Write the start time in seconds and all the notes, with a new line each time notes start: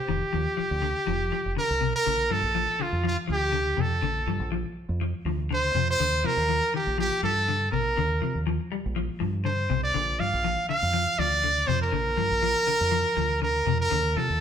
Already playing: G4
0.08 F1 D#3
0.33 D#2 F3
0.57 F3, muted fingered electric bass stroke
0.71 D2
0.82 D3
1.07 F1 F3
1.32 F3
1.46 F1
1.57 D3 A#4
1.70 C2
1.81 C3
1.96 A#4
2.06 A#1 D3
2.30 G2 F3 A4
2.43 A#1
2.55 F3
2.80 D3 F4
2.93 F2
3.04 F3 F4
3.28 D2 F3
3.32 G4
3.53 D3
3.77 F2 C3 A4
4.02 A#1 D3
4.27 G2 F3
4.40 A#1
4.52 F3
4.89 F2
5.01 F3
5.25 D2 F3
5.51 D3 C5
5.75 F2 C3
5.91 C5
6.00 D#2 D3
6.24 C3 F3 A#4
6.37 D#2
6.49 F3
6.74 D#3 G4
6.87 A#1
6.98 F3 G4
7.23 G2 F3 A4
7.48 D3
7.72 A#1 C3 A#4
7.97 D#2 D3
8.22 C3 F3
8.35 D#2
8.47 F3
8.72 G3
8.86 A#1
8.96 F3
9.20 G2 F3
9.45 D3 C5
9.70 C2 C3
9.83 D5
9.94 A#1 D3
10.20 G2 F3 F5
10.34 A#1
10.44 F3
10.69 D3 F5
10.83 F2
10.93 F3
11.19 D2 F3 D5
11.44 D3
11.67 F2 C3 C5
11.82 A#4
11.92 A#1 D3
12.17 G2 F3
12.31 A#1
12.43 F3
12.67 D3
12.81 F2
12.92 F3
13.17 D2 F3
13.42 D3 A#4
13.66 F2 C3
13.80 A#4
13.91 D#2 D3
14.16 C3 F3 A4
14.30 D#2